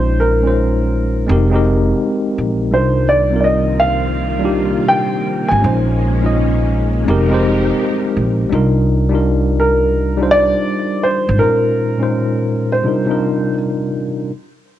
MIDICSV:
0, 0, Header, 1, 5, 480
1, 0, Start_track
1, 0, Key_signature, -3, "minor"
1, 0, Tempo, 722892
1, 1814, Time_signature, 4, 2, 24, 8
1, 9822, End_track
2, 0, Start_track
2, 0, Title_t, "Upright piano"
2, 0, Program_c, 0, 0
2, 0, Note_on_c, 0, 72, 87
2, 133, Note_on_c, 0, 70, 84
2, 140, Note_off_c, 0, 72, 0
2, 1067, Note_off_c, 0, 70, 0
2, 1817, Note_on_c, 0, 72, 83
2, 2039, Note_off_c, 0, 72, 0
2, 2051, Note_on_c, 0, 74, 84
2, 2251, Note_off_c, 0, 74, 0
2, 2261, Note_on_c, 0, 74, 61
2, 2285, Note_on_c, 0, 75, 80
2, 2294, Note_off_c, 0, 74, 0
2, 2513, Note_off_c, 0, 75, 0
2, 2520, Note_on_c, 0, 77, 96
2, 3242, Note_on_c, 0, 79, 96
2, 3269, Note_off_c, 0, 77, 0
2, 3641, Note_on_c, 0, 80, 86
2, 3657, Note_off_c, 0, 79, 0
2, 4579, Note_off_c, 0, 80, 0
2, 6372, Note_on_c, 0, 70, 88
2, 6826, Note_off_c, 0, 70, 0
2, 6847, Note_on_c, 0, 74, 123
2, 7328, Note_on_c, 0, 72, 89
2, 7345, Note_off_c, 0, 74, 0
2, 7554, Note_off_c, 0, 72, 0
2, 7565, Note_on_c, 0, 70, 94
2, 8420, Note_off_c, 0, 70, 0
2, 8447, Note_on_c, 0, 72, 72
2, 8986, Note_off_c, 0, 72, 0
2, 9822, End_track
3, 0, Start_track
3, 0, Title_t, "Tine electric piano"
3, 0, Program_c, 1, 4
3, 0, Note_on_c, 1, 56, 62
3, 0, Note_on_c, 1, 61, 65
3, 0, Note_on_c, 1, 63, 63
3, 0, Note_on_c, 1, 65, 60
3, 0, Note_on_c, 1, 72, 69
3, 27, Control_c, 1, 64, 127
3, 149, Note_off_c, 1, 56, 0
3, 153, Note_off_c, 1, 61, 0
3, 158, Note_off_c, 1, 63, 0
3, 163, Note_off_c, 1, 65, 0
3, 167, Note_off_c, 1, 72, 0
3, 279, Note_on_c, 1, 56, 66
3, 286, Note_on_c, 1, 61, 61
3, 298, Note_on_c, 1, 63, 58
3, 306, Note_on_c, 1, 65, 60
3, 314, Note_on_c, 1, 72, 80
3, 788, Note_off_c, 1, 56, 0
3, 791, Note_off_c, 1, 61, 0
3, 797, Note_off_c, 1, 63, 0
3, 802, Note_off_c, 1, 65, 0
3, 805, Note_off_c, 1, 72, 0
3, 842, Note_on_c, 1, 56, 89
3, 850, Note_on_c, 1, 60, 88
3, 858, Note_on_c, 1, 63, 86
3, 864, Control_c, 1, 64, 0
3, 869, Note_on_c, 1, 67, 78
3, 877, Note_on_c, 1, 70, 94
3, 973, Note_off_c, 1, 56, 0
3, 977, Note_off_c, 1, 60, 0
3, 980, Control_c, 1, 64, 127
3, 981, Note_off_c, 1, 63, 0
3, 987, Note_off_c, 1, 67, 0
3, 991, Note_off_c, 1, 70, 0
3, 995, Note_on_c, 1, 56, 88
3, 1005, Note_on_c, 1, 60, 84
3, 1014, Note_on_c, 1, 63, 85
3, 1023, Note_on_c, 1, 67, 75
3, 1032, Note_on_c, 1, 70, 101
3, 1565, Note_off_c, 1, 56, 0
3, 1570, Note_off_c, 1, 60, 0
3, 1575, Note_off_c, 1, 63, 0
3, 1579, Note_off_c, 1, 67, 0
3, 1584, Note_off_c, 1, 70, 0
3, 1802, Note_on_c, 1, 55, 65
3, 1811, Note_on_c, 1, 62, 64
3, 1820, Note_on_c, 1, 63, 59
3, 1822, Control_c, 1, 64, 0
3, 1830, Note_on_c, 1, 65, 60
3, 1839, Note_on_c, 1, 70, 69
3, 1938, Control_c, 1, 64, 127
3, 2070, Note_off_c, 1, 55, 0
3, 2074, Note_off_c, 1, 62, 0
3, 2079, Note_off_c, 1, 63, 0
3, 2084, Note_off_c, 1, 65, 0
3, 2088, Note_off_c, 1, 70, 0
3, 2195, Note_on_c, 1, 55, 62
3, 2202, Note_on_c, 1, 60, 61
3, 2214, Note_on_c, 1, 63, 58
3, 2221, Note_on_c, 1, 65, 62
3, 2232, Note_on_c, 1, 70, 77
3, 2706, Note_off_c, 1, 55, 0
3, 2710, Note_off_c, 1, 60, 0
3, 2715, Note_off_c, 1, 63, 0
3, 2719, Note_off_c, 1, 65, 0
3, 2724, Note_off_c, 1, 70, 0
3, 2915, Note_on_c, 1, 55, 75
3, 2927, Note_on_c, 1, 62, 69
3, 2934, Note_on_c, 1, 63, 69
3, 2945, Note_on_c, 1, 65, 67
3, 2953, Note_on_c, 1, 67, 85
3, 3485, Note_off_c, 1, 55, 0
3, 3491, Note_off_c, 1, 62, 0
3, 3495, Note_off_c, 1, 63, 0
3, 3500, Note_off_c, 1, 65, 0
3, 3504, Note_off_c, 1, 67, 0
3, 3721, Note_on_c, 1, 56, 70
3, 3729, Note_on_c, 1, 61, 63
3, 3739, Note_on_c, 1, 63, 66
3, 3742, Control_c, 1, 64, 0
3, 3748, Note_on_c, 1, 65, 60
3, 3758, Note_on_c, 1, 72, 73
3, 3873, Control_c, 1, 64, 127
3, 3989, Note_off_c, 1, 56, 0
3, 3993, Note_off_c, 1, 61, 0
3, 3998, Note_off_c, 1, 63, 0
3, 4003, Note_off_c, 1, 65, 0
3, 4007, Note_off_c, 1, 72, 0
3, 4121, Note_on_c, 1, 56, 62
3, 4130, Note_on_c, 1, 61, 59
3, 4138, Note_on_c, 1, 63, 61
3, 4147, Note_on_c, 1, 65, 65
3, 4157, Note_on_c, 1, 75, 77
3, 4629, Note_off_c, 1, 56, 0
3, 4633, Note_off_c, 1, 61, 0
3, 4638, Note_off_c, 1, 63, 0
3, 4642, Note_off_c, 1, 65, 0
3, 4647, Note_off_c, 1, 75, 0
3, 4681, Note_on_c, 1, 56, 87
3, 4690, Note_on_c, 1, 60, 78
3, 4700, Note_on_c, 1, 63, 84
3, 4702, Control_c, 1, 64, 0
3, 4711, Note_on_c, 1, 67, 84
3, 4718, Note_on_c, 1, 70, 107
3, 4813, Note_off_c, 1, 56, 0
3, 4818, Note_off_c, 1, 60, 0
3, 4822, Note_off_c, 1, 63, 0
3, 4828, Note_off_c, 1, 67, 0
3, 4828, Control_c, 1, 64, 127
3, 4832, Note_off_c, 1, 70, 0
3, 4837, Note_on_c, 1, 56, 93
3, 4846, Note_on_c, 1, 60, 84
3, 4857, Note_on_c, 1, 63, 85
3, 4865, Note_on_c, 1, 67, 81
3, 4874, Note_on_c, 1, 72, 103
3, 5406, Note_off_c, 1, 56, 0
3, 5411, Note_off_c, 1, 60, 0
3, 5416, Note_off_c, 1, 63, 0
3, 5420, Note_off_c, 1, 67, 0
3, 5425, Note_off_c, 1, 72, 0
3, 5641, Note_on_c, 1, 55, 83
3, 5650, Note_on_c, 1, 62, 73
3, 5659, Note_on_c, 1, 63, 80
3, 5664, Control_c, 1, 64, 0
3, 5669, Note_on_c, 1, 65, 81
3, 5679, Note_on_c, 1, 70, 90
3, 5790, Control_c, 1, 64, 127
3, 5909, Note_off_c, 1, 55, 0
3, 5913, Note_off_c, 1, 62, 0
3, 5918, Note_off_c, 1, 63, 0
3, 5923, Note_off_c, 1, 65, 0
3, 5928, Note_off_c, 1, 70, 0
3, 6038, Note_on_c, 1, 55, 83
3, 6047, Note_on_c, 1, 62, 71
3, 6056, Note_on_c, 1, 63, 69
3, 6067, Note_on_c, 1, 65, 70
3, 6075, Note_on_c, 1, 70, 87
3, 6547, Note_off_c, 1, 55, 0
3, 6552, Note_off_c, 1, 62, 0
3, 6556, Note_off_c, 1, 63, 0
3, 6562, Note_off_c, 1, 65, 0
3, 6566, Note_off_c, 1, 70, 0
3, 6755, Note_on_c, 1, 55, 80
3, 6763, Note_on_c, 1, 62, 73
3, 6774, Note_on_c, 1, 63, 69
3, 6782, Note_on_c, 1, 65, 68
3, 6790, Note_on_c, 1, 72, 87
3, 7325, Note_off_c, 1, 55, 0
3, 7329, Note_off_c, 1, 62, 0
3, 7335, Note_off_c, 1, 63, 0
3, 7339, Note_off_c, 1, 65, 0
3, 7343, Note_off_c, 1, 72, 0
3, 7553, Note_on_c, 1, 46, 66
3, 7563, Note_on_c, 1, 56, 59
3, 7568, Note_on_c, 1, 61, 57
3, 7576, Note_on_c, 1, 63, 65
3, 7581, Control_c, 1, 64, 0
3, 7584, Note_on_c, 1, 65, 61
3, 7590, Note_on_c, 1, 72, 78
3, 7679, Control_c, 1, 64, 127
3, 7825, Note_off_c, 1, 46, 0
3, 7830, Note_off_c, 1, 56, 0
3, 7833, Note_off_c, 1, 61, 0
3, 7837, Note_off_c, 1, 63, 0
3, 7841, Note_off_c, 1, 65, 0
3, 7844, Note_off_c, 1, 72, 0
3, 7951, Note_on_c, 1, 46, 65
3, 7959, Note_on_c, 1, 56, 65
3, 7966, Note_on_c, 1, 61, 63
3, 7975, Note_on_c, 1, 63, 58
3, 7982, Note_on_c, 1, 65, 56
3, 7988, Note_on_c, 1, 72, 77
3, 8464, Note_off_c, 1, 46, 0
3, 8468, Note_off_c, 1, 56, 0
3, 8472, Note_off_c, 1, 61, 0
3, 8476, Note_off_c, 1, 63, 0
3, 8480, Note_off_c, 1, 65, 0
3, 8482, Note_off_c, 1, 72, 0
3, 8515, Note_on_c, 1, 48, 73
3, 8522, Note_on_c, 1, 55, 70
3, 8529, Note_on_c, 1, 62, 63
3, 8537, Note_on_c, 1, 63, 68
3, 8543, Note_on_c, 1, 65, 68
3, 8544, Control_c, 1, 64, 0
3, 8551, Note_on_c, 1, 70, 81
3, 8650, Note_off_c, 1, 48, 0
3, 8654, Note_off_c, 1, 55, 0
3, 8657, Note_off_c, 1, 62, 0
3, 8659, Control_c, 1, 64, 127
3, 8661, Note_off_c, 1, 63, 0
3, 8664, Note_off_c, 1, 65, 0
3, 8668, Note_off_c, 1, 70, 0
3, 8670, Note_on_c, 1, 48, 73
3, 8677, Note_on_c, 1, 55, 66
3, 8685, Note_on_c, 1, 62, 70
3, 8693, Note_on_c, 1, 63, 71
3, 8700, Note_on_c, 1, 65, 68
3, 8706, Note_on_c, 1, 70, 86
3, 9243, Note_off_c, 1, 48, 0
3, 9246, Note_off_c, 1, 55, 0
3, 9250, Note_off_c, 1, 62, 0
3, 9254, Note_off_c, 1, 63, 0
3, 9258, Note_off_c, 1, 65, 0
3, 9261, Note_off_c, 1, 70, 0
3, 9504, Control_c, 1, 64, 0
3, 9822, End_track
4, 0, Start_track
4, 0, Title_t, "String machine"
4, 0, Program_c, 2, 50
4, 1812, Note_on_c, 2, 60, 66
4, 1813, Note_on_c, 2, 48, 80
4, 1813, Note_on_c, 2, 51, 75
4, 1813, Note_on_c, 2, 58, 66
4, 1815, Note_on_c, 2, 65, 91
4, 3714, Note_off_c, 2, 60, 0
4, 3715, Note_off_c, 2, 48, 0
4, 3715, Note_off_c, 2, 51, 0
4, 3715, Note_off_c, 2, 65, 0
4, 3728, Note_on_c, 2, 56, 79
4, 3729, Note_on_c, 2, 61, 84
4, 4667, Note_off_c, 2, 58, 0
4, 4681, Note_off_c, 2, 56, 0
4, 4682, Note_off_c, 2, 61, 0
4, 4690, Note_on_c, 2, 56, 79
4, 4690, Note_on_c, 2, 63, 78
4, 4692, Note_on_c, 2, 53, 78
4, 4694, Note_on_c, 2, 67, 79
4, 4694, Note_on_c, 2, 70, 89
4, 5643, Note_off_c, 2, 53, 0
4, 5643, Note_off_c, 2, 56, 0
4, 5643, Note_off_c, 2, 63, 0
4, 5644, Note_off_c, 2, 70, 0
4, 5645, Note_off_c, 2, 67, 0
4, 9822, End_track
5, 0, Start_track
5, 0, Title_t, "Upright bass"
5, 0, Program_c, 3, 32
5, 0, Note_on_c, 3, 34, 89
5, 830, Note_off_c, 3, 34, 0
5, 859, Note_on_c, 3, 29, 99
5, 1267, Note_off_c, 3, 29, 0
5, 1582, Note_on_c, 3, 34, 83
5, 1822, Note_off_c, 3, 34, 0
5, 1822, Note_on_c, 3, 36, 88
5, 3148, Note_off_c, 3, 36, 0
5, 3659, Note_on_c, 3, 32, 83
5, 3727, Note_off_c, 3, 32, 0
5, 3744, Note_on_c, 3, 34, 96
5, 4672, Note_off_c, 3, 34, 0
5, 4702, Note_on_c, 3, 29, 88
5, 5109, Note_off_c, 3, 29, 0
5, 5423, Note_on_c, 3, 34, 80
5, 5624, Note_off_c, 3, 34, 0
5, 5660, Note_on_c, 3, 36, 90
5, 6987, Note_off_c, 3, 36, 0
5, 7496, Note_on_c, 3, 32, 98
5, 7565, Note_off_c, 3, 32, 0
5, 9822, End_track
0, 0, End_of_file